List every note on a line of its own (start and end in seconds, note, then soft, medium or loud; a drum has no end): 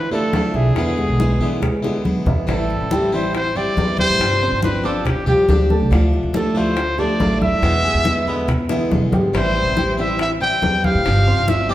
0.00 0.50 D3 medium
0.00 0.11 B4 medium
0.11 0.32 F3 medium
0.11 0.47 A3 medium
0.11 0.33 A3 medium
0.11 0.33 D4 medium
0.11 0.32 E4 medium
0.11 0.47 A4 medium
0.11 0.58 A4 medium
0.11 0.47 D5 medium
0.11 high conga soft
0.33 0.75 F3 soft
0.33 0.76 A3 soft
0.33 0.76 D4 medium
0.33 0.76 E4 medium
0.33 high bongo medium
0.33 low bongo medium
0.33 high conga medium
0.54 0.75 B1 medium
0.54 0.90 E4 medium
0.54 1.84 G#4 medium
0.54 0.90 E5 medium
0.54 high bongo soft
0.75 1.06 E2 loud
0.75 1.18 B2 medium
0.75 1.18 D3 medium
0.75 1.19 G#3 medium
0.75 1.19 B3 medium
0.75 1.19 E4 medium
0.75 high bongo medium
0.75 high conga soft
0.98 1.33 G#3 medium
0.98 1.33 G#4 medium
0.98 1.33 B4 medium
0.98 high bongo soft
0.98 high conga soft
1.07 1.39 B1 medium
1.19 1.40 D3 soft
1.19 1.40 G#3 soft
1.19 1.40 B3 soft
1.19 1.39 E4 medium
1.19 high bongo medium
1.19 high conga medium
1.39 1.61 D3 medium
1.39 2.22 E3 medium
1.39 1.58 E3 medium
1.39 1.61 G#3 medium
1.39 1.62 B3 medium
1.39 1.61 E4 medium
1.39 1.58 E4 medium
1.39 1.58 E5 medium
1.39 high conga soft
1.62 1.79 G#3 medium
1.62 1.80 G#4 medium
1.62 1.80 B4 medium
1.62 muted steel-string acoustic guitar stroke medium
1.62 high bongo medium
1.62 high conga soft
1.62 low conga medium
1.82 2.02 D3 soft
1.82 2.19 G#3 medium
1.82 2.03 G#3 medium
1.82 2.04 B3 medium
1.82 2.04 E4 medium
1.82 2.19 G#4 medium
1.82 2.19 B4 medium
1.82 high bongo medium
1.82 high conga soft
2.04 2.46 D3 soft
2.04 2.47 G#3 medium
2.04 2.47 B3 soft
2.04 2.48 E4 medium
2.04 high conga medium
2.26 2.36 E2 medium
2.26 2.44 E3 medium
2.26 2.44 E4 medium
2.26 2.44 E5 medium
2.26 low bongo medium
2.26 low conga medium
2.47 2.78 A1 loud
2.47 2.89 E3 medium
2.47 2.83 E3 medium
2.47 2.90 G3 medium
2.47 2.90 C4 medium
2.47 2.84 E4 medium
2.47 2.91 E4 medium
2.47 2.84 E5 medium
2.47 high bongo medium
2.47 high conga soft
2.51 3.16 A4 medium
2.70 high bongo soft
2.70 high conga soft
2.80 3.62 A1 medium
2.90 3.11 E3 medium
2.90 3.12 G3 medium
2.90 3.09 G3 medium
2.90 3.12 C4 medium
2.90 3.11 E4 medium
2.90 3.09 G4 medium
2.90 3.09 G5 medium
2.90 high bongo medium
2.90 high conga loud
3.12 3.48 E3 medium
3.12 3.33 G3 medium
3.12 3.34 C4 medium
3.12 3.33 E4 medium
3.12 3.48 E4 medium
3.12 3.35 C5 medium
3.12 3.49 E5 medium
3.12 high bongo soft
3.12 high conga soft
3.34 3.58 C5 loud
3.34 muted steel-string acoustic guitar stroke medium
3.34 high bongo medium
3.34 high conga soft
3.55 3.91 G3 medium
3.55 3.77 G3 soft
3.55 3.77 C4 medium
3.55 3.76 E4 medium
3.55 3.91 G4 medium
3.55 3.99 D5 loud
3.55 3.91 G5 medium
3.55 high bongo soft
3.55 high conga soft
3.77 4.07 E2 medium
3.77 4.19 E3 soft
3.77 4.20 G3 medium
3.77 4.20 C4 medium
3.77 4.20 E4 medium
3.77 high bongo soft
3.77 low bongo medium
3.77 high conga medium
3.98 4.34 G4 medium
3.98 4.59 C5 loud
3.98 4.35 G5 medium
3.98 4.35 G6 medium
3.98 high conga medium
4.09 4.19 A2 medium
4.19 4.50 G1 loud
4.19 4.62 C3 medium
4.19 4.62 F3 medium
4.19 4.63 C4 medium
4.19 4.63 D4 medium
4.19 4.63 G4 medium
4.19 high bongo medium
4.19 high conga soft
4.41 4.77 C4 medium
4.41 4.77 C5 medium
4.41 4.77 C6 medium
4.41 high bongo soft
4.41 high conga soft
4.51 5.34 G1 medium
4.62 4.83 F3 medium
4.62 4.84 C4 soft
4.62 4.83 D4 medium
4.62 4.82 G4 medium
4.62 4.87 B4 medium
4.62 high bongo medium
4.62 high conga loud
4.84 5.04 F3 medium
4.84 5.04 C4 medium
4.84 5.20 D4 medium
4.84 5.04 D4 medium
4.84 5.04 G4 medium
4.84 5.08 A4 medium
4.84 5.20 D5 medium
4.84 5.20 D6 medium
4.84 high bongo soft
4.84 high conga soft
5.05 5.27 G4 medium
5.05 muted steel-string acoustic guitar stroke medium
5.05 high bongo medium
5.05 high conga soft
5.05 low conga medium
5.26 5.46 F3 medium
5.26 5.63 G3 medium
5.26 5.47 C4 soft
5.26 5.47 D4 medium
5.26 5.47 G4 medium
5.26 5.63 G4 medium
5.26 5.67 G4 medium
5.26 5.63 G5 medium
5.26 high bongo soft
5.26 high conga soft
5.26 low conga medium
5.48 5.79 D2 medium
5.48 5.90 F3 soft
5.48 5.91 C4 medium
5.48 5.91 D4 medium
5.48 5.91 G4 medium
5.48 high bongo soft
5.48 low bongo medium
5.48 high conga medium
5.70 5.88 A3 medium
5.70 5.88 A4 medium
5.70 5.88 A5 medium
5.70 high conga medium
5.80 5.90 C2 medium
5.91 6.22 D2 loud
5.91 6.33 D3 medium
5.91 6.32 F3 medium
5.91 6.27 F3 medium
5.91 6.33 A3 medium
5.91 6.34 D4 medium
5.91 6.27 F5 medium
5.91 high bongo medium
5.91 high conga soft
6.13 high bongo soft
6.13 high conga soft
6.23 7.05 D2 medium
6.33 6.54 F3 soft
6.33 6.55 A3 medium
6.33 6.52 A3 medium
6.33 6.54 D4 medium
6.33 6.53 E4 medium
6.33 6.52 A4 medium
6.33 6.59 A4 medium
6.33 6.52 A5 medium
6.33 high bongo medium
6.33 high conga medium
6.55 6.91 F3 medium
6.55 6.75 F3 medium
6.55 6.76 A3 medium
6.55 6.76 D4 medium
6.55 6.76 E4 medium
6.55 6.91 F4 medium
6.55 7.01 C5 loud
6.55 6.91 F5 medium
6.55 high bongo soft
6.55 high conga soft
6.76 muted steel-string acoustic guitar stroke medium
6.76 high bongo medium
6.76 high conga soft
6.98 7.19 F3 medium
6.98 7.34 A3 medium
6.98 7.19 A3 soft
6.98 7.20 D4 medium
6.98 7.19 E4 medium
6.98 7.34 A4 medium
6.98 7.41 D5 loud
6.98 7.34 A5 medium
6.98 high bongo soft
6.98 high conga soft
7.20 7.50 A1 medium
7.20 7.62 F3 medium
7.20 7.62 A3 medium
7.20 7.63 D4 medium
7.20 7.63 E4 medium
7.20 high bongo soft
7.20 low bongo medium
7.20 high conga medium
7.41 7.77 E4 medium
7.41 7.77 E5 medium
7.41 8.66 E5 loud
7.41 7.77 E6 medium
7.41 high conga medium
7.51 7.61 D#2 medium
7.62 7.93 E2 loud
7.62 8.05 B2 medium
7.62 8.03 D3 medium
7.62 8.04 G#3 medium
7.62 8.05 B3 medium
7.62 8.06 E4 medium
7.62 high bongo medium
7.62 high conga soft
7.84 8.19 G#3 medium
7.84 8.20 G#4 medium
7.84 8.20 G#5 medium
7.84 high bongo soft
7.84 high conga soft
7.94 8.76 E2 medium
8.04 8.26 D3 medium
8.04 8.26 G#3 medium
8.04 8.26 B3 medium
8.04 8.26 E4 medium
8.04 high bongo medium
8.04 high conga medium
8.27 8.47 D3 medium
8.27 8.48 G#3 medium
8.27 8.62 B3 medium
8.27 8.48 B3 medium
8.27 8.48 E4 medium
8.27 8.62 B4 medium
8.27 8.63 B5 medium
8.27 high bongo soft
8.27 high conga soft
8.48 muted steel-string acoustic guitar stroke medium
8.48 high bongo medium
8.48 high conga soft
8.48 low conga medium
8.69 8.90 D3 soft
8.69 9.05 E3 medium
8.69 8.91 G#3 medium
8.69 8.91 B3 medium
8.69 8.91 E4 medium
8.69 9.05 E4 medium
8.69 9.05 E5 medium
8.69 high bongo medium
8.69 high conga soft
8.91 9.10 E1 medium
8.91 9.33 D3 soft
8.91 9.34 G#3 soft
8.91 9.34 B3 medium
8.91 9.34 E4 medium
8.91 low bongo medium
8.91 high conga medium
9.12 9.32 G#1 medium
9.12 9.31 G3 medium
9.12 9.31 G4 medium
9.12 9.31 G5 medium
9.12 low bongo medium
9.12 high conga medium
9.33 9.65 A1 loud
9.33 9.75 E3 medium
9.33 9.70 E3 medium
9.33 9.76 G3 medium
9.33 9.77 C4 medium
9.33 9.70 E4 medium
9.33 9.77 E4 medium
9.33 9.95 C5 loud
9.33 9.70 E5 medium
9.33 high bongo medium
9.33 high conga soft
9.56 high bongo soft
9.56 high conga soft
9.65 10.48 A1 medium
9.77 9.98 E3 soft
9.77 9.95 G3 medium
9.77 9.98 G3 soft
9.77 9.97 C4 soft
9.77 9.96 E4 medium
9.77 9.95 G4 medium
9.77 9.95 G5 medium
9.77 high bongo medium
9.77 high conga medium
9.97 10.34 E3 medium
9.97 10.18 G3 medium
9.97 10.19 C4 medium
9.97 10.19 E4 medium
9.97 10.34 E4 medium
9.97 10.34 E5 medium
9.97 10.19 E5 loud
9.97 high bongo soft
9.97 high conga soft
10.19 10.31 E5 loud
10.19 muted steel-string acoustic guitar stroke medium
10.19 high bongo medium
10.19 high conga soft
10.40 10.77 G3 medium
10.40 10.61 G3 soft
10.40 10.62 C4 medium
10.40 10.62 E4 medium
10.40 10.77 G4 medium
10.40 10.87 G5 loud
10.40 10.77 G5 medium
10.40 high bongo soft
10.40 high conga soft
10.62 10.93 E2 medium
10.62 11.04 E3 medium
10.62 11.05 G3 medium
10.62 11.04 C4 medium
10.62 11.05 E4 medium
10.62 high bongo soft
10.62 low bongo medium
10.62 high conga medium
10.84 11.20 G4 medium
10.84 11.51 F5 loud
10.84 11.20 G5 medium
10.84 11.20 G6 medium
10.84 high conga medium
10.95 11.05 A2 medium
11.05 11.36 G1 loud
11.05 11.47 C3 medium
11.05 11.46 F3 medium
11.05 11.47 C4 medium
11.05 11.48 D4 medium
11.05 11.48 G4 medium
11.05 high bongo medium
11.05 high conga soft
11.27 11.62 C4 medium
11.27 11.62 C5 medium
11.27 11.63 C6 medium
11.27 high bongo soft
11.27 high conga soft
11.38 11.74 G1 medium
11.47 11.68 F3 medium
11.47 11.69 C4 soft
11.47 11.69 D4 medium
11.47 11.68 G4 medium
11.47 11.73 E5 loud
11.47 high bongo medium
11.47 high conga loud
11.69 11.74 C4 medium
11.69 11.74 D4 medium
11.69 11.74 G4 medium
11.69 11.74 D5 medium
11.69 11.74 D6 medium
11.69 high bongo soft
11.69 high conga soft